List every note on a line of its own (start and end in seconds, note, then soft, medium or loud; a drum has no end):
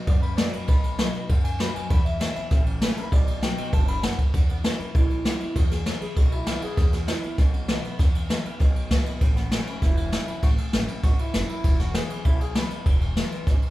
0.07 0.39 F#2 medium
0.07 0.65 F#2 medium
0.07 0.22 D5 loud
0.07 kick loud
0.07 ride medium
0.22 0.37 B4 loud
0.22 ride medium
0.37 0.52 F#3 medium
0.37 0.52 B3 medium
0.37 0.52 D#4 loud
0.37 0.50 F#4 loud
0.37 0.53 D5 loud
0.37 snare loud
0.37 ride medium
0.52 0.68 D#4 medium
0.52 0.67 F#4 medium
0.52 0.67 B4 loud
0.52 muted upright bass stroke medium
0.52 ride medium
0.68 1.00 B1 medium
0.68 1.26 B2 loud
0.68 1.28 B4 loud
0.68 kick loud
0.68 ride medium
0.84 ride medium
0.98 1.13 F#3 medium
0.98 1.13 B3 medium
0.98 1.14 D#4 medium
0.98 1.12 F#4 loud
0.98 snare loud
0.98 ride medium
1.13 1.29 D#4 medium
1.13 1.28 F#4 medium
1.13 muted upright bass stroke medium
1.13 ride medium
1.29 1.87 F#2 medium
1.29 1.61 F#2 medium
1.29 kick loud
1.29 ride loud
1.44 1.60 G#5 loud
1.44 ride medium
1.59 1.74 F#3 medium
1.59 1.74 B3 medium
1.59 1.74 D#4 medium
1.59 1.73 F#4 loud
1.59 1.74 B5 loud
1.59 snare loud
1.59 ride medium
1.74 1.90 D#4 medium
1.74 1.89 F#4 medium
1.74 1.90 G#5 loud
1.74 muted upright bass stroke medium
1.74 ride medium
1.90 2.48 E2 loud
1.90 2.22 E2 medium
1.90 2.05 B5 loud
1.90 kick loud
1.90 ride medium
2.05 2.65 E5 loud
2.05 ride medium
2.20 2.35 E3 medium
2.20 2.35 G#3 medium
2.20 2.36 B3 loud
2.20 2.34 E4 loud
2.20 snare loud
2.20 ride medium
2.35 2.51 B3 medium
2.35 2.50 E4 medium
2.35 muted upright bass stroke medium
2.35 ride medium
2.51 2.83 A1 loud
2.51 3.10 A2 medium
2.51 kick loud
2.51 snare soft
2.51 ride medium
2.66 ride medium
2.82 2.96 E3 medium
2.82 2.97 A3 loud
2.82 2.97 C#4 loud
2.82 2.96 E4 loud
2.82 snare loud
2.82 ride medium
2.97 3.13 C#4 medium
2.97 3.12 E4 medium
2.97 3.12 B4 loud
2.97 muted upright bass stroke medium
2.97 ride medium
3.12 3.44 B1 medium
3.12 3.70 B2 loud
3.12 3.42 D5 medium
3.12 kick loud
3.12 ride medium
3.27 ride medium
3.42 3.72 F#3 medium
3.42 3.72 B3 loud
3.42 3.72 D#4 loud
3.42 3.73 F#4 medium
3.42 3.72 G5 medium
3.42 snare loud
3.42 ride medium
3.58 muted upright bass stroke medium
3.58 ride medium
3.73 4.05 F#1 loud
3.73 4.02 G#2 medium
3.73 3.88 A5 loud
3.73 kick loud
3.73 ride medium
3.88 4.03 B5 loud
3.88 ride medium
4.03 4.33 F#2 medium
4.03 4.19 F#5 loud
4.03 snare loud
4.03 ride loud
4.19 kick medium
4.19 ride medium
4.34 4.66 E2 medium
4.34 4.92 E2 loud
4.34 kick loud
4.34 ride medium
4.49 4.56 B3 medium
4.49 ride medium
4.64 4.79 E3 medium
4.64 4.79 G#3 medium
4.64 4.80 B3 medium
4.64 4.95 C#4 medium
4.64 4.78 E4 medium
4.64 snare loud
4.64 ride medium
4.79 4.95 B3 soft
4.79 4.94 E4 medium
4.79 muted upright bass stroke medium
4.79 ride medium
4.95 5.27 B1 medium
4.95 5.53 B2 medium
4.95 5.58 E4 loud
4.95 kick loud
4.95 ride medium
5.10 ride medium
5.25 5.40 E3 medium
5.25 5.40 G#3 medium
5.25 5.40 B3 medium
5.25 5.39 E4 loud
5.25 snare loud
5.25 ride medium
5.40 5.56 B3 medium
5.40 5.55 E4 medium
5.40 ride medium
5.56 5.88 E2 medium
5.56 6.14 E2 loud
5.56 5.72 F#4 medium
5.56 kick loud
5.56 ride medium
5.71 6.00 G#4 loud
5.71 snare soft
5.71 ride medium
5.86 6.01 E3 medium
5.86 6.01 G#3 medium
5.86 6.01 B3 loud
5.86 6.00 E4 medium
5.86 snare loud
5.86 ride medium
6.01 6.17 B3 medium
6.01 6.16 E4 medium
6.01 6.16 G#4 medium
6.01 muted upright bass stroke medium
6.01 ride medium
6.16 6.48 B1 medium
6.16 6.75 B2 medium
6.16 6.32 F#4 loud
6.16 kick loud
6.16 ride medium
6.32 6.63 E4 loud
6.32 ride medium
6.47 6.61 E3 medium
6.47 6.62 G#3 loud
6.47 6.62 B3 loud
6.47 6.61 E4 loud
6.47 snare loud
6.47 ride loud
6.62 6.78 B3 medium
6.62 6.77 E4 medium
6.62 6.91 G#4 loud
6.62 muted upright bass stroke medium
6.62 ride medium
6.77 7.35 E2 loud
6.77 7.10 E2 medium
6.77 kick loud
6.77 snare soft
6.77 ride medium
6.93 7.08 F#4 loud
6.93 snare soft
6.93 ride medium
7.07 7.22 E3 medium
7.07 7.22 G#3 medium
7.07 7.23 B3 medium
7.07 7.38 E4 loud
7.07 7.22 E4 medium
7.07 snare loud
7.07 ride medium
7.23 7.39 B3 medium
7.23 7.38 E4 medium
7.23 muted upright bass stroke medium
7.23 ride medium
7.38 7.70 B1 loud
7.38 7.96 B2 medium
7.38 7.53 C#4 loud
7.38 kick loud
7.38 snare soft
7.38 ride medium
7.53 7.68 B3 medium
7.53 ride medium
7.68 7.83 E3 loud
7.68 7.84 G#3 medium
7.68 7.97 B3 medium
7.68 7.84 B3 loud
7.68 7.82 E4 loud
7.68 snare loud
7.68 ride medium
7.84 8.00 B3 soft
7.84 7.98 E4 medium
7.84 muted upright bass stroke medium
7.84 ride medium
7.99 8.57 E2 loud
7.99 8.32 E2 medium
7.99 kick loud
7.99 snare soft
7.99 ride medium
8.15 ride medium
8.29 8.44 E3 medium
8.29 8.44 G#3 medium
8.29 8.45 B3 medium
8.29 8.43 E4 medium
8.29 snare loud
8.29 ride medium
8.44 8.60 B3 soft
8.44 8.59 E4 medium
8.44 muted upright bass stroke medium
8.44 ride medium
8.60 8.92 B1 loud
8.60 9.18 B2 medium
8.60 kick loud
8.60 snare soft
8.60 ride medium
8.76 ride medium
8.91 9.05 E3 medium
8.91 9.06 G#3 medium
8.91 9.06 B3 loud
8.91 9.05 E4 loud
8.91 kick medium
8.91 snare loud
8.91 ride medium
9.06 9.22 B3 soft
9.06 9.21 E4 medium
9.06 muted upright bass stroke medium
9.06 ride medium
9.21 9.53 A1 medium
9.21 9.79 A2 loud
9.21 kick loud
9.21 ride medium
9.36 9.51 B3 medium
9.36 snare soft
9.36 ride medium
9.51 9.67 E3 medium
9.51 9.67 A3 medium
9.51 9.82 C#4 medium
9.51 9.67 C#4 medium
9.51 9.67 E4 medium
9.51 snare loud
9.51 ride medium
9.67 9.83 C#4 medium
9.67 9.82 E4 medium
9.67 ride medium
9.82 10.14 E1 medium
9.82 10.41 E2 medium
9.82 10.45 E4 medium
9.82 kick loud
9.82 snare soft
9.82 ride medium
9.97 ride medium
10.12 10.27 E3 medium
10.12 10.28 A3 medium
10.12 10.28 C#4 medium
10.12 10.27 E4 medium
10.12 snare loud
10.12 ride medium
10.28 10.43 C#4 medium
10.28 10.42 E4 medium
10.28 muted upright bass stroke medium
10.28 ride medium
10.43 10.53 A1 medium
10.43 11.01 A2 loud
10.43 10.49 F#4 loud
10.43 kick loud
10.43 snare soft
10.43 ride medium
10.58 11.04 G#4 medium
10.58 muted upright bass stroke medium
10.58 ride medium
10.73 10.86 A1 medium
10.73 10.88 E3 medium
10.73 10.88 A3 loud
10.73 10.88 C#4 loud
10.73 10.87 E4 loud
10.73 snare loud
10.73 ride medium
10.88 11.04 C#4 soft
10.88 11.03 E4 medium
10.88 muted upright bass stroke medium
10.88 ride medium
11.03 11.16 G#1 loud
11.03 11.33 G#2 medium
11.03 11.20 F#4 loud
11.03 kick loud
11.03 snare soft
11.03 ride medium
11.18 11.48 E4 loud
11.18 muted upright bass stroke medium
11.18 ride medium
11.34 11.47 F#1 loud
11.34 11.63 F#2 medium
11.34 snare loud
11.34 ride medium
11.48 11.80 E4 loud
11.48 muted upright bass stroke medium
11.48 ride medium
11.64 11.96 E1 medium
11.64 12.23 E2 loud
11.64 kick loud
11.64 ride medium
11.80 11.95 F#4 loud
11.80 snare soft
11.80 ride medium
11.94 12.09 E3 medium
11.94 12.09 G#3 medium
11.94 12.10 B3 medium
11.94 12.09 E4 medium
11.94 12.25 G#4 loud
11.94 snare loud
11.94 ride medium
12.09 12.26 B3 soft
12.09 12.25 E4 medium
12.09 muted upright bass stroke medium
12.09 ride medium
12.25 12.57 B1 medium
12.25 12.83 B2 medium
12.25 12.41 E4 loud
12.25 kick loud
12.25 ride medium
12.40 12.56 G#4 loud
12.40 ride medium
12.55 12.70 E3 medium
12.55 12.70 G#3 medium
12.55 12.71 B3 loud
12.55 12.69 E4 medium
12.55 12.84 B4 medium
12.55 snare loud
12.55 ride medium
12.70 12.86 B3 medium
12.70 12.85 E4 medium
12.70 muted upright bass stroke medium
12.70 ride medium
12.86 13.18 E1 medium
12.86 13.44 E2 loud
12.86 kick loud
12.86 ride medium
13.01 ride medium
13.17 13.46 E3 medium
13.17 13.46 G#3 medium
13.17 13.46 B3 loud
13.17 13.46 E4 loud
13.17 snare loud
13.17 ride medium
13.32 muted upright bass stroke medium
13.32 ride medium
13.47 13.60 G#1 loud
13.47 13.70 G#2 medium
13.47 kick loud
13.47 snare soft
13.47 ride medium
13.62 muted upright bass stroke medium
13.62 ride medium